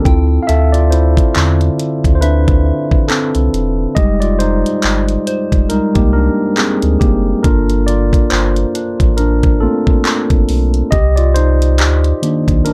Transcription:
0.00 0.26 A4 medium
0.04 0.39 D2 loud
0.04 1.35 C4 medium
0.04 0.92 E4 medium
0.04 0.73 F4 medium
0.04 1.06 G5 medium
0.04 kick loud
0.04 closed hi-hat medium
0.43 0.48 F5 medium
0.47 1.16 D2 loud
0.47 0.73 A4 medium
0.47 0.74 E5 loud
0.47 closed hi-hat medium
0.72 0.91 F4 medium
0.72 0.92 D5 loud
0.72 closed hi-hat soft
0.91 1.35 E4 medium
0.91 2.14 C5 loud
0.91 closed hi-hat medium
1.17 kick loud
1.17 closed hi-hat medium
1.35 1.70 E2 medium
1.35 1.75 D3 medium
1.35 1.75 C4 soft
1.35 1.75 E4 medium
1.35 clap loud
1.35 closed hi-hat medium
1.61 closed hi-hat soft
1.79 closed hi-hat medium
2.04 2.72 D2 loud
2.04 kick medium
2.04 closed hi-hat medium
2.15 2.22 C5 medium
2.21 3.06 D4 medium
2.21 3.05 B4 loud
2.21 3.23 E5 medium
2.21 closed hi-hat medium
2.48 kick loud
2.48 closed hi-hat soft
2.91 kick loud
3.08 3.75 C4 medium
3.08 3.74 A4 medium
3.08 clap loud
3.08 closed hi-hat medium
3.35 3.49 C2 loud
3.35 closed hi-hat medium
3.54 3.87 E1 medium
3.54 closed hi-hat medium
3.95 4.64 F1 loud
3.95 5.23 G3 medium
3.95 5.23 G#3 medium
3.95 4.40 D#4 medium
3.95 4.20 G4 medium
3.95 4.19 D#5 loud
3.95 kick loud
3.95 closed hi-hat medium
4.20 4.39 F4 medium
4.20 4.40 D5 loud
4.20 closed hi-hat soft
4.39 5.67 D#4 medium
4.39 5.74 C5 loud
4.39 closed hi-hat medium
4.66 closed hi-hat medium
4.83 5.18 G1 medium
4.83 clap loud
4.83 closed hi-hat medium
5.09 closed hi-hat soft
5.27 6.28 C5 medium
5.27 closed hi-hat medium
5.52 5.66 F1 medium
5.52 kick medium
5.52 closed hi-hat medium
5.69 5.81 C2 soft
5.69 6.10 G3 medium
5.69 6.10 G#3 soft
5.69 5.95 D#4 medium
5.69 5.93 A#4 medium
5.69 closed hi-hat medium
5.95 6.30 C2 loud
5.95 6.13 A#3 medium
5.95 6.14 G4 medium
5.95 kick medium
5.95 closed hi-hat soft
6.13 6.55 D4 medium
6.13 6.58 A#4 loud
6.56 6.98 C4 medium
6.56 6.97 G#4 medium
6.56 clap loud
6.56 closed hi-hat medium
6.82 6.97 D2 medium
6.82 closed hi-hat medium
6.99 7.35 F#1 medium
6.99 7.42 A#3 medium
6.99 7.41 G4 medium
6.99 kick loud
6.99 closed hi-hat medium
7.43 8.12 G1 loud
7.43 8.05 A#3 medium
7.43 7.85 D4 medium
7.43 7.88 F4 medium
7.43 8.05 A4 medium
7.43 7.84 A#4 loud
7.43 kick loud
7.43 closed hi-hat medium
7.70 closed hi-hat soft
7.87 8.29 F4 medium
7.87 8.32 D5 loud
7.87 closed hi-hat medium
8.13 kick loud
8.13 closed hi-hat medium
8.30 8.65 G1 loud
8.30 9.15 F4 medium
8.30 9.20 C5 medium
8.30 clap loud
8.30 closed hi-hat medium
8.56 closed hi-hat soft
8.75 9.76 D4 medium
8.75 closed hi-hat medium
9.00 9.68 A1 loud
9.00 kick medium
9.00 closed hi-hat medium
9.17 9.59 D4 medium
9.17 9.62 A#4 medium
9.17 closed hi-hat medium
9.43 kick loud
9.43 closed hi-hat soft
9.60 10.01 A3 medium
9.60 10.01 A#3 soft
9.60 10.45 C4 medium
9.60 10.02 F4 medium
9.60 10.44 A4 medium
9.87 kick medium
10.05 clap loud
10.05 closed hi-hat medium
10.30 10.45 G1 medium
10.30 kick loud
10.30 closed hi-hat medium
10.49 10.83 B1 loud
10.49 closed hi-hat medium
10.49 open hi-hat medium
10.74 closed hi-hat soft
10.91 11.81 C2 loud
10.91 11.16 G4 medium
10.91 11.15 D#5 loud
10.91 kick loud
10.91 closed hi-hat medium
11.16 11.35 F4 medium
11.16 11.34 D5 medium
11.16 closed hi-hat soft
11.34 12.63 D#4 medium
11.34 12.69 C5 loud
11.34 closed hi-hat medium
11.62 closed hi-hat medium
11.78 12.13 D2 loud
11.78 12.73 G4 medium
11.78 clap loud
11.78 closed hi-hat medium
12.04 closed hi-hat soft
12.22 12.73 D#3 medium
12.22 12.73 A#3 medium
12.22 12.66 D4 medium
12.22 closed hi-hat medium
12.48 12.62 C2 loud
12.48 kick medium
12.48 closed hi-hat medium
12.65 12.73 G1 soft
12.65 12.73 D4 medium
12.65 12.73 A#4 loud
12.65 closed hi-hat medium

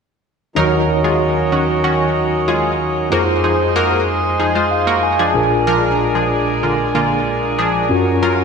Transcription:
0.55 3.08 D#2 medium
0.55 3.08 D#3 medium
0.55 3.09 F#3 medium
0.55 0.82 F#3 medium
0.55 3.09 C#4 medium
0.55 3.07 D#4 medium
0.55 5.31 D#4 medium
0.55 0.82 D#4 loud
0.55 3.08 F#4 medium
0.55 3.09 A#4 medium
0.55 0.82 A#4 loud
0.55 3.08 A#4 medium
0.55 3.08 C#5 medium
1.04 1.17 G#3 medium
1.04 1.17 F4 medium
1.04 1.17 G#4 medium
1.52 1.65 D#3 medium
1.52 1.65 C#4 medium
1.52 1.65 F#4 medium
1.84 2.10 D#3 medium
1.84 2.10 C#4 medium
1.84 2.10 F#4 loud
2.48 2.73 G#3 medium
2.48 2.73 F4 medium
2.48 2.73 G#4 medium
3.10 5.31 F2 medium
3.10 7.86 G#3 medium
3.10 3.25 A#3 loud
3.10 5.30 D#4 medium
3.10 5.31 F4 medium
3.10 3.25 F#4 medium
3.10 8.44 G#4 medium
3.10 5.31 G#4 medium
3.10 3.24 A#4 loud
3.10 5.33 C5 medium
3.10 5.32 C5 medium
3.44 3.57 F3 medium
3.44 3.57 D#4 medium
3.44 3.57 G#4 medium
3.76 4.01 A#3 medium
3.76 4.01 F#4 loud
3.76 4.01 A#4 loud
4.40 4.52 F3 medium
4.40 4.52 D#4 medium
4.40 4.52 G#4 medium
4.55 4.68 G#3 medium
4.55 4.68 F4 medium
4.55 4.68 C5 medium
4.71 5.01 F5 medium
4.87 5.00 A#3 medium
4.87 5.00 F#4 medium
4.87 5.00 A#4 medium
5.03 5.33 G#5 medium
5.19 5.45 F3 medium
5.19 5.45 D4 medium
5.19 5.45 G#4 loud
5.34 7.86 A#1 medium
5.34 7.86 A#2 medium
5.34 7.86 D4 medium
5.34 7.88 D4 medium
5.34 7.86 F4 medium
5.34 7.87 G#4 medium
5.34 7.88 A#4 medium
5.34 7.87 A#4 medium
5.34 5.65 G#5 medium
5.67 5.93 F3 medium
5.67 5.93 D4 medium
5.67 5.93 A#4 loud
6.15 6.28 F3 medium
6.15 6.28 D4 medium
6.15 6.28 G#4 medium
6.63 6.76 D3 medium
6.63 6.76 A#3 medium
6.63 6.76 F4 medium
6.95 7.20 D3 medium
6.95 7.20 A#3 medium
6.95 7.20 F4 loud
7.58 7.84 F3 medium
7.58 7.84 D4 medium
7.58 7.84 G#4 medium
7.89 8.44 F#2 medium
7.89 8.44 F#3 medium
7.89 8.44 C#4 medium
7.89 8.44 F4 medium
7.89 8.44 F#4 medium
7.89 8.44 A#4 medium
8.23 8.35 F#3 loud
8.23 8.35 F4 loud
8.23 8.35 A#4 loud

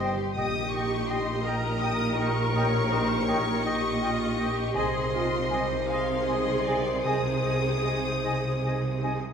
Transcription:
0.00 0.18 G1 medium
0.00 0.18 G2 medium
0.00 0.39 C3 medium
0.00 0.18 D#3 medium
0.00 3.53 G3 medium
0.00 0.39 C4 medium
0.00 0.72 D#4 medium
0.00 0.18 G4 medium
0.00 0.33 G4 medium
0.00 0.18 C5 medium
0.00 0.15 D#5 medium
0.00 0.09 G5 medium
0.00 0.33 C6 medium
0.17 0.36 G4 medium
0.35 4.72 A#1 medium
0.35 2.53 A#2 medium
0.35 4.73 A#2 medium
0.35 4.72 D#3 medium
0.35 1.42 G4 medium
0.35 4.73 G4 medium
0.35 2.51 D#5 medium
0.35 0.54 D#5 medium
0.35 0.44 G5 medium
0.35 0.70 D#6 medium
0.72 1.45 D#4 medium
0.72 0.91 D#5 medium
0.72 0.83 G5 medium
0.72 1.09 C#6 medium
1.09 1.82 A#3 medium
1.09 1.26 D#5 medium
1.09 1.17 G5 medium
1.09 1.46 C6 medium
1.44 2.17 D#4 medium
1.44 3.64 A#4 medium
1.44 1.60 D#5 medium
1.44 1.53 G5 medium
1.44 1.82 A#5 medium
1.80 3.25 A#3 medium
1.80 1.97 D#5 medium
1.80 1.90 G5 medium
1.80 2.18 D#6 medium
2.17 3.63 D#4 medium
2.17 2.35 D#5 medium
2.17 2.27 G5 medium
2.17 4.76 C#6 loud
2.54 4.80 A#2 medium
2.54 2.90 C#5 medium
2.54 2.72 D#5 medium
2.54 2.64 G5 medium
2.88 4.80 C#4 medium
2.88 3.26 C5 medium
2.88 3.08 D#5 medium
2.88 2.99 G5 medium
3.26 4.00 A#3 medium
3.26 3.64 C#5 medium
3.26 3.45 D#5 medium
3.26 3.35 G5 medium
3.62 4.38 D#4 medium
3.62 4.01 G4 medium
3.62 4.74 D#5 medium
3.62 3.82 D#5 medium
3.62 3.73 G5 medium
4.00 4.80 A#3 medium
4.00 4.38 F4 medium
4.00 4.09 G5 medium
4.04 4.20 D#5 medium
4.38 5.13 D#4 medium
4.38 4.77 G4 medium
4.38 4.56 D#5 medium
4.38 4.46 G5 medium
4.74 9.18 C2 loud
4.74 7.03 C3 medium
4.74 9.18 C3 medium
4.74 9.04 D#3 medium
4.74 5.14 G#4 medium
4.74 9.03 C5 medium
4.74 5.87 D#5 medium
4.74 4.83 G#5 medium
4.74 5.88 C6 medium
4.78 4.94 D#5 medium
5.13 5.87 D#4 medium
5.13 5.52 F4 medium
5.13 5.22 G#5 medium
5.18 5.34 D#5 medium
5.50 5.90 G3 medium
5.50 6.26 G#3 medium
5.50 5.70 D#5 medium
5.50 5.59 G#5 medium
5.87 6.64 D#4 medium
5.87 7.04 G#4 medium
5.87 6.27 F5 medium
5.87 5.96 G#5 medium
5.91 6.09 D#5 medium
5.91 7.04 C6 medium
6.25 7.83 G#3 medium
6.25 6.65 D#5 medium
6.25 6.36 G#5 medium
6.32 6.48 D#5 medium
6.65 8.22 D#4 medium
6.65 7.05 D5 medium
6.65 6.84 D#5 medium
6.65 6.75 G#5 medium
7.04 9.33 C3 medium
7.04 9.18 G#4 medium
7.04 9.18 C5 medium
7.04 7.22 D#5 medium
7.04 7.14 G#5 medium
7.04 9.21 D#6 medium
7.45 9.33 C4 medium
7.45 7.62 D#5 medium
7.45 7.55 G#5 medium
7.84 8.63 G#3 medium
7.84 8.00 D#5 medium
7.84 7.94 G#5 medium
8.24 9.02 D#4 medium
8.24 8.41 D#5 medium
8.24 8.33 G#5 medium
8.63 9.33 G#3 medium
8.63 8.81 D#5 medium
8.63 8.72 G#5 medium
9.03 9.33 D#4 medium
9.03 9.20 D#5 medium
9.03 9.12 G#5 medium

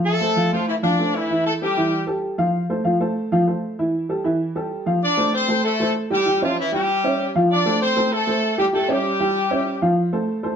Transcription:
0.00 0.15 F3 medium
0.00 0.15 F4 medium
0.00 0.15 F5 medium
0.06 0.49 A3 medium
0.06 0.49 A4 loud
0.20 0.33 A3 medium
0.20 0.33 A4 medium
0.20 0.34 C5 medium
0.36 0.49 F3 medium
0.36 0.49 F4 medium
0.36 0.49 F5 medium
0.52 0.67 F3 medium
0.52 0.78 A3 medium
0.52 0.67 F4 medium
0.52 0.78 A4 medium
0.52 0.78 C5 medium
0.68 0.76 E3 medium
0.68 0.75 E4 medium
0.83 0.96 F3 medium
0.83 1.12 D4 medium
0.83 0.96 F4 medium
0.83 1.13 D5 medium
0.83 0.96 F5 medium
0.99 1.24 A3 medium
0.99 1.25 A4 medium
0.99 1.25 C5 medium
1.15 1.46 E3 medium
1.15 1.46 E4 medium
1.30 1.55 E3 medium
1.30 1.55 E4 medium
1.30 1.56 E5 medium
1.47 1.53 A3 medium
1.47 1.53 A4 medium
1.62 1.74 G3 medium
1.62 2.05 G3 medium
1.62 1.74 G4 medium
1.62 2.05 G4 loud
1.62 1.74 A4 medium
1.77 2.02 E3 medium
1.77 2.02 E4 medium
1.77 2.02 E5 medium
2.07 2.33 G3 medium
2.07 2.33 G4 medium
2.07 2.33 A4 medium
2.38 2.64 F3 medium
2.38 2.64 F4 medium
2.38 2.64 F5 medium
2.70 2.82 A3 medium
2.70 2.82 A4 medium
2.70 2.83 C5 medium
2.84 2.97 F3 medium
2.84 2.97 F4 medium
2.84 2.98 F5 medium
3.00 3.26 A3 medium
3.00 3.26 A4 medium
3.00 3.26 C5 medium
3.32 3.45 F3 loud
3.32 3.45 F4 medium
3.32 3.45 F5 medium
3.47 3.73 A3 medium
3.47 3.73 A4 medium
3.47 3.73 C5 medium
3.79 4.04 E3 medium
3.79 4.04 E4 medium
3.79 4.04 E5 medium
4.09 4.22 G3 medium
4.09 4.22 G4 medium
4.09 4.22 A4 medium
4.24 4.50 E3 medium
4.24 4.50 E4 medium
4.24 4.50 E5 medium
4.55 4.81 G3 medium
4.55 4.81 G4 medium
4.55 4.81 A4 medium
4.86 4.99 F3 medium
4.86 4.99 F4 medium
4.86 4.99 F5 medium
5.03 5.32 D4 medium
5.03 5.32 D5 loud
5.17 5.43 A3 medium
5.17 5.43 A4 medium
5.17 5.43 C5 medium
5.34 5.62 C4 medium
5.34 5.62 C5 loud
5.48 5.74 A3 medium
5.48 5.74 A4 medium
5.48 5.74 C5 medium
5.65 5.93 A3 medium
5.65 5.93 A4 medium
5.80 6.05 A3 medium
5.80 6.05 A4 medium
5.80 6.06 C5 medium
6.10 6.23 G3 loud
6.10 6.40 G3 medium
6.10 6.23 G4 medium
6.10 6.40 G4 loud
6.10 6.23 G5 medium
6.26 6.39 G3 medium
6.26 6.39 G4 medium
6.26 6.39 G5 medium
6.42 6.58 F3 medium
6.42 6.67 C#4 medium
6.42 6.58 F4 medium
6.42 6.67 C#5 medium
6.42 6.67 E5 medium
6.59 6.73 E3 medium
6.59 6.73 E4 loud
6.72 6.98 G3 loud
6.72 7.31 G3 medium
6.72 6.98 G4 loud
6.72 7.31 G4 medium
6.72 6.98 G5 medium
7.04 7.29 C#4 medium
7.04 7.29 C#5 medium
7.04 7.30 E5 medium
7.35 7.60 F3 medium
7.35 7.60 F4 loud
7.35 7.60 F5 medium
7.52 7.80 D4 medium
7.52 7.80 D5 loud
7.66 7.91 A3 medium
7.66 7.91 A4 medium
7.66 7.91 C5 medium
7.82 8.10 C4 medium
7.82 8.10 C5 loud
7.96 8.22 A3 medium
7.96 8.22 A4 medium
7.96 8.22 C5 medium
8.13 8.59 A3 medium
8.13 8.59 A4 loud
8.27 8.52 A3 medium
8.27 8.53 A4 medium
8.27 8.53 C5 medium
8.58 8.71 G3 medium
8.58 8.66 G3 medium
8.58 8.71 G4 medium
8.58 8.66 G4 medium
8.58 8.71 G5 medium
8.73 8.86 G3 medium
8.73 8.89 A3 medium
8.73 8.86 G4 medium
8.73 8.89 A4 medium
8.73 8.86 G5 medium
8.88 9.83 G3 medium
8.88 9.14 C#4 medium
8.88 9.83 G4 medium
8.88 9.14 C#5 medium
8.88 9.14 E5 medium
9.20 9.45 G3 medium
9.20 9.45 G4 loud
9.20 9.45 G5 medium
9.51 9.76 C#4 medium
9.51 9.76 C#5 medium
9.51 9.76 E5 medium
9.82 10.07 F3 loud
9.82 10.07 F4 medium
9.82 10.07 F5 medium
10.13 10.38 A3 medium
10.13 10.38 A4 medium
10.13 10.38 C5 medium
10.43 10.56 A3 medium
10.43 10.56 A4 medium
10.43 10.56 C5 medium

